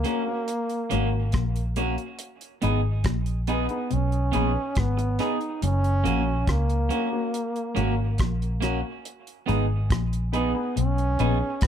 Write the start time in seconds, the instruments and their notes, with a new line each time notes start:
Already playing: trombone A#3
0.04 clean electric guitar A#3 C#4 F#4, upright piano A#3 C#4 F#4 A#4, closed hi-hat
0.27 upright piano A#3 C#4 F#4 A#4
0.48 closed hi-hat
0.70 closed hi-hat
0.90 fingered electric bass G#1, clean electric guitar G#2 A#3 C#4 F#4, upright piano A#3 C#4 F#4 A#4, closed hi-hat
1.13 upright piano F#4 A#4
1.32 fingered electric bass A#1, clean electric guitar A#2, kick, cross-stick, closed hi-hat
1.56 closed hi-hat
1.76 clean electric guitar A#3 C#4 F#4, upright piano A#3 C#4 F#4 A#4, closed hi-hat
1.98 closed hi-hat
2.19 closed hi-hat
2.41 closed hi-hat
2.62 fingered electric bass G#1, clean electric guitar G#2 B3 D#4 G#4, upright piano B3 D#4 G#4 B4, closed hi-hat
3.04 fingered electric bass A#1, clean electric guitar A#2, kick, cross-stick, closed hi-hat
3.26 closed hi-hat
3.47 clean electric guitar B3 D#4 G#4, upright piano B3 D#4 G#4 B4, closed hi-hat
3.51 trombone B3
3.69 upright piano B3 D#4 G#4 B4, muted clean electric guitar stroke, closed hi-hat
3.90 fingered electric bass B1, clean electric guitar B2, trombone C#4, closed hi-hat
4.12 closed hi-hat
4.32 fingered electric bass A#1, clean electric guitar A#2 B3 D#4 G#4, upright piano B3 D#4 G#4 B4, closed hi-hat
4.56 upright piano G#4 B4
4.75 fingered electric bass G#1, clean electric guitar G#2, kick, cross-stick, closed hi-hat
4.80 trombone B3
4.97 muted clean electric guitar stroke, closed hi-hat
5.19 upright piano B3 D#4 G#4 B4, clean electric guitar B3 D#4 G#4, trombone D#4, cross-stick, closed hi-hat
5.41 closed hi-hat
5.62 fingered electric bass F#1, clean electric guitar F#2, trombone C#4, closed hi-hat
5.84 closed hi-hat
6.04 fingered electric bass A#1, clean electric guitar A#2 A#3 C#4 F#4, upright piano A#3 C#4 F#4 A#4, closed hi-hat
6.47 fingered electric bass C#2, clean electric guitar C#3, trombone A#3, kick, cross-stick, closed hi-hat
6.70 closed hi-hat
6.89 clean electric guitar A#3 C#4 F#4, upright piano A#3 C#4 F#4 A#4, closed hi-hat
7.12 upright piano A#3 C#4 F#4 A#4
7.34 closed hi-hat
7.56 closed hi-hat
7.75 fingered electric bass G#1, clean electric guitar G#2 A#3 C#4 F#4, upright piano A#3 C#4 F#4 A#4, closed hi-hat
7.98 upright piano F#4 A#4
8.18 fingered electric bass A#1, clean electric guitar A#2, kick, cross-stick, closed hi-hat
8.42 closed hi-hat
8.61 clean electric guitar A#3 C#4 F#4, upright piano A#3 C#4 F#4 A#4, cross-stick, closed hi-hat
9.05 closed hi-hat
9.27 closed hi-hat
9.46 fingered electric bass G#1, clean electric guitar G#2 B3 D#4 G#4, upright piano B3 D#4 G#4 B4, closed hi-hat
9.90 fingered electric bass A#1, clean electric guitar A#2, kick, cross-stick, closed hi-hat
10.13 closed hi-hat
10.32 upright piano B3 D#4 G#4 B4, clean electric guitar B3 D#4 G#4, trombone B3, closed hi-hat
10.54 upright piano B3 D#4 G#4 B4, muted clean electric guitar stroke
10.76 fingered electric bass B1, clean electric guitar B2, trombone C#4, closed hi-hat
10.98 closed hi-hat
11.19 fingered electric bass A#1, clean electric guitar A#2 B3 D#4 G#4, upright piano B3 D#4 G#4 B4, closed hi-hat
11.41 upright piano G#4 B4
11.61 fingered electric bass G#1, clean electric guitar G#2, kick, cross-stick, closed hi-hat